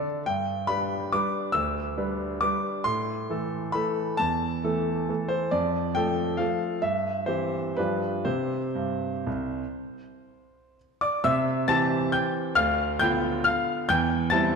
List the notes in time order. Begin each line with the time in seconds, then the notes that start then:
Already playing: D3 D4 A4
0.26 G2 G5
0.67 G3 D4 B4 B5
1.12 G3 D4 B4 D6
1.52 D2 E6
1.98 G3 D4 B4
2.41 G3 D4 B4 D6
2.84 A2 C6
3.30 E3 A3 A4
3.72 E3 A3 A4 B5
4.17 E2 A5
4.64 E3 A3 A4
5.09 E3 A3 A4
5.29 C5
5.51 F2 D5
5.95 F3 A3 A4 G5
6.37 F3 A3 A4 F5
6.82 G2 E5
7.26 E3 C4 G4 C5
7.77 G2 F3 D4 G4 B4
8.25 C3 C4 G4 C5
8.75 G2
9.27 C2
11.01 D5 D6
11.24 C3 E5 E6
11.68 E3 C4 G4 A5 A6
12.12 G5 G6
12.55 D2 F5 F6
12.99 D3 B3 F4 G5 G6
13.44 F5 F6
13.89 E2 G5 G6
14.30 G3 C4 E4 A5 A6